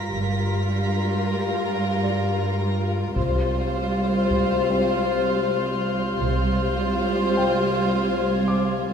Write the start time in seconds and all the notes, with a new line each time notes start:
Already playing: A#6 B6
0.12 G1 G2 G3 F4 A#4
1.53 A#6
2.03 D5
3.16 C2 G3 F4 C5 C6, taiko
3.92 F6
4.31 taiko
4.68 C4 C5 G6
6.20 C2 G3 F4 C5
7.37 G5
7.79 G#6
8.48 D6